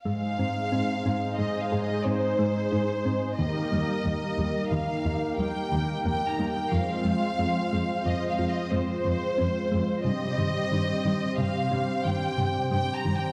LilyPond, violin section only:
\new Staff \with { instrumentName = "Violin section" } { \time 5/4 \key aes \major \tempo 4 = 90 f''2 \tuplet 3/2 { ees''8 f''8 ees''8 } c''2 | ees''2 f''4 g''4 \tuplet 3/2 { g''8 bes''8 g''8 } | f''2 \tuplet 3/2 { ees''8 f''8 ees''8 } c''2 | ees''2 f''4 g''4 \tuplet 3/2 { g''8 bes''8 g''8 } | }